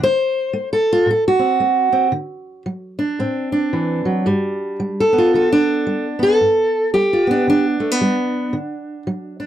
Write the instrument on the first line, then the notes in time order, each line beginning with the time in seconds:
steel-string acoustic guitar
0.00 D3 C5
0.53 A3
0.73 A4
0.93 F4
1.06 A2
1.11 A4
1.28 F#4
1.39 C4
1.60 A3
1.92 C4
2.12 D3
2.66 F#3
2.99 D4
3.19 A2 C4
3.52 D4
3.73 E3
4.05 F#3
4.26 G2 G3
4.80 G3
5.00 A4
5.13 B3
5.18 F4
5.34 D3 A4
5.52 D4
5.87 G3
6.19 B3 A4
6.41 G2
6.94 G3 G4
7.13 F4
7.27 B3 D4
7.47 D3 D4
7.80 A3
7.91 B3
8.01 G3
8.53 D3
9.07 F#3
9.40 D4